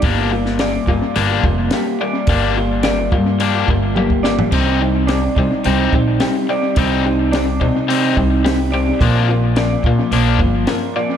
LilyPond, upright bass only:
\new Staff \with { instrumentName = "Upright bass" } { \clef bass \time 4/4 \key c \minor \tempo 4 = 107 g,,4. g,,16 r16 g,,8 f,,8 r4 | g,,4. g,4 g,,4. | c,4. c,16 r16 c,8 bes,,8 r4 | c,4. c4 c,4. |
bes,,4. bes,,16 r16 bes,,8 g,,8 r4 | }